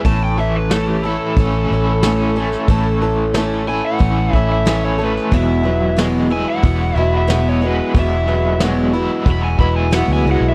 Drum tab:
HH |o---o---o---o---|o---o---o---o---|o---o---o---o---|o---o---o---o---|
SD |----o-------o--o|----o-------o--o|----o-------o---|----o-------o---|
BD |o-------o-------|o-------o-o-----|o-------o-------|o-------o-o-----|